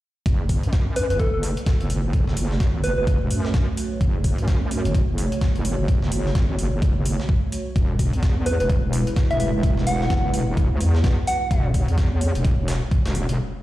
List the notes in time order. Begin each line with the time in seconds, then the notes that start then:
0.26 F#1 A3 F#4 C#5, kick, closed hi-hat
0.49 kick, closed hi-hat, open hi-hat
0.63 F#2, closed hi-hat
0.73 kick, snare, closed hi-hat
0.96 B4, closed hi-hat, open hi-hat
1.10 F#1 B4, closed hi-hat
1.20 A4, kick, closed hi-hat
1.34 F#1 A4
1.43 closed hi-hat, open hi-hat
1.57 closed hi-hat
1.66 kick, snare, closed hi-hat
1.81 F#1, closed hi-hat
1.90 closed hi-hat, open hi-hat
2.04 F#1
2.13 kick, closed hi-hat
2.27 snare
2.37 F#1, closed hi-hat, open hi-hat
2.51 snare
2.60 G#1, kick, snare, closed hi-hat
2.84 F#1 B4, closed hi-hat, open hi-hat
2.98 F#1 B4
3.07 kick, closed hi-hat
3.21 E1
3.31 F#2, closed hi-hat, open hi-hat
3.45 snare
3.54 kick, snare, closed hi-hat
3.77 closed hi-hat, open hi-hat
4.01 F#1, kick, closed hi-hat
4.24 kick, closed hi-hat, open hi-hat
4.38 F#2, closed hi-hat
4.48 kick, snare, closed hi-hat
4.71 closed hi-hat, open hi-hat
4.85 F#1, closed hi-hat
4.95 kick, closed hi-hat
5.09 F#1
5.18 closed hi-hat, open hi-hat
5.32 closed hi-hat
5.41 kick, snare, closed hi-hat
5.56 F#1, closed hi-hat
5.65 closed hi-hat, open hi-hat
5.79 F#1
5.88 kick, closed hi-hat
6.02 snare
6.12 F#1, closed hi-hat, open hi-hat
6.26 snare
6.35 G#1, kick, snare, closed hi-hat
6.59 F#1, closed hi-hat, open hi-hat
6.73 F#1
6.82 kick, closed hi-hat
7.05 closed hi-hat, open hi-hat
7.20 snare
7.29 kick
7.52 closed hi-hat, open hi-hat
7.76 E1 G#3 E4 B4, kick, closed hi-hat
7.99 kick, closed hi-hat, open hi-hat
8.13 E2, closed hi-hat
8.23 kick, snare, closed hi-hat
8.46 B4, closed hi-hat, open hi-hat
8.60 E1 B4, closed hi-hat
8.70 kick, closed hi-hat
8.84 E1
8.93 closed hi-hat, open hi-hat
9.07 closed hi-hat
9.16 kick, snare, closed hi-hat
9.31 E1 E5, closed hi-hat
9.40 E5, closed hi-hat, open hi-hat
9.54 E1
9.63 kick, closed hi-hat
9.77 snare
9.87 E1 F#5, closed hi-hat, open hi-hat
10.01 snare
10.10 F#1, kick, snare, closed hi-hat
10.34 E1, closed hi-hat, open hi-hat
10.48 E1
10.57 kick, closed hi-hat
10.71 D2
10.81 E2, closed hi-hat, open hi-hat
10.95 snare
11.04 kick, snare, closed hi-hat
11.27 F#5, closed hi-hat, open hi-hat
11.51 E1 C#5, kick, closed hi-hat
11.74 kick, closed hi-hat, open hi-hat
11.88 E2, closed hi-hat
11.98 kick, snare, closed hi-hat
12.21 closed hi-hat, open hi-hat
12.35 E1, closed hi-hat
12.45 kick, closed hi-hat
12.59 E1
12.68 snare, closed hi-hat, open hi-hat
12.91 kick, closed hi-hat
13.06 E1, snare, closed hi-hat
13.15 open hi-hat
13.29 E1, closed hi-hat